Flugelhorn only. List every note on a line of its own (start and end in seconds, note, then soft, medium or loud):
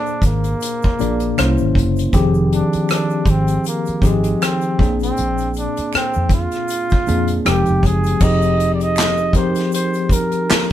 0.00 0.22 D4 medium
0.26 1.73 A#3 medium
2.53 2.88 D4 medium
2.92 3.32 D4 medium
3.30 3.67 C4 medium
3.68 4.08 A#3 medium
4.07 4.43 G#3 medium
4.44 4.98 C4 medium
5.03 5.53 C4 medium
5.58 5.92 D4 medium
5.96 6.30 C4 medium
6.34 7.42 F4 loud
7.48 7.87 G4 medium
7.86 8.24 G#4 medium
8.23 8.73 D#5 loud
8.74 8.84 D5 medium
8.82 9.36 D#5 loud
9.37 9.71 C5 medium
9.75 10.14 C5 medium
10.12 10.71 A#4 medium